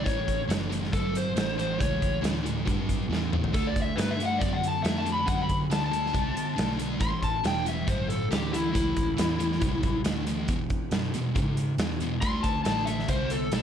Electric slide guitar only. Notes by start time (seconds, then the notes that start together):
0.06 C#5
0.94 A4
1.17 C5
1.59 C5
1.81 C#5
3.54 A4
3.67 D5
3.82 E5
3.96 B4
4.11 E5
4.25 F#5
4.38 D5
4.53 F#5
4.68 A5
4.83 E5
4.98 A5
5.12 B5
5.27 F#5
5.42 B5
5.72 A5
5.86 A5
7.01 C6
7.24 A5
7.46 G5
7.69 E5
7.88 C5
8.09 A4
8.31 G4
8.52 E4
8.73 E4
12.21 C6
12.43 A5
12.64 A5
12.85 E5
13.09 C5
13.31 A4
13.54 A4